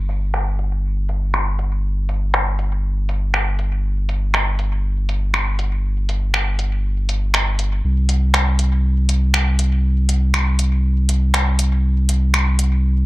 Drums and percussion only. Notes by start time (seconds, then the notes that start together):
0.09 closed hi-hat
0.34 finger snap
0.59 closed hi-hat
1.09 closed hi-hat
1.34 finger snap
1.59 closed hi-hat
2.09 closed hi-hat
2.34 finger snap
2.59 closed hi-hat
3.09 closed hi-hat
3.34 finger snap
3.59 closed hi-hat
4.09 closed hi-hat
4.34 finger snap
4.59 closed hi-hat
5.09 closed hi-hat
5.34 finger snap
5.59 closed hi-hat
6.09 closed hi-hat
6.34 finger snap
6.59 closed hi-hat
7.09 closed hi-hat
7.34 finger snap
7.59 closed hi-hat
8.09 closed hi-hat
8.34 finger snap
8.59 closed hi-hat
9.09 closed hi-hat
9.34 finger snap
9.59 closed hi-hat
10.09 closed hi-hat
10.34 finger snap
10.59 closed hi-hat
11.09 closed hi-hat
11.34 finger snap
11.59 closed hi-hat
12.09 closed hi-hat
12.34 finger snap
12.59 closed hi-hat